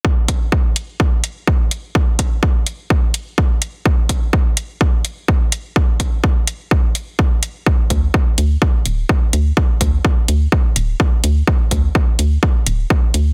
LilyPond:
<<
  \new Staff \with { instrumentName = "FM bass" } { \clef bass \time 4/4 \key c \major \tempo 4 = 126 r1 | r1 | r1 | r1 |
r8 d,8 r8 d,8 r8 d,,8 r8 d,8 | r8 d,8 r8 d,8 r8 d,,8 r8 d,8 | r8 d,8 r8 d,8 r8 d,,8 r8 d,8 | }
  \new DrumStaff \with { instrumentName = "Drums" } \drummode { \time 4/4 bd8 <hh bd>8 bd8 hh8 bd8 hh8 bd8 hh8 | bd8 <hh bd>8 bd8 hh8 bd8 hh8 bd8 hh8 | bd8 <hh bd>8 bd8 hh8 bd8 hh8 bd8 hh8 | bd8 <hh bd>8 bd8 hh8 bd8 hh8 bd8 hh8 |
bd8 <hh bd>8 bd8 hh8 bd8 hh8 bd8 hh8 | bd8 <hh bd>8 bd8 hh8 bd8 hh8 bd8 hh8 | bd8 <hh bd>8 bd8 hh8 bd8 hh8 bd8 hh8 | }
>>